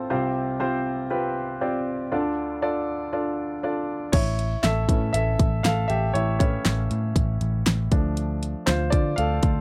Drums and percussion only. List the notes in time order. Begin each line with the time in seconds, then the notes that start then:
4.13 kick, closed hi-hat, crash
4.39 closed hi-hat
4.64 snare, closed hi-hat
4.89 kick, closed hi-hat
5.14 closed hi-hat
5.39 kick, closed hi-hat
5.65 snare, closed hi-hat
5.90 closed hi-hat
6.15 closed hi-hat
6.40 kick, closed hi-hat
6.65 snare, closed hi-hat
6.91 closed hi-hat
7.16 kick, closed hi-hat
7.41 closed hi-hat
7.66 snare, closed hi-hat
7.92 kick, closed hi-hat
8.17 closed hi-hat
8.43 closed hi-hat
8.67 snare, closed hi-hat
8.92 kick, closed hi-hat
9.18 closed hi-hat
9.43 kick, closed hi-hat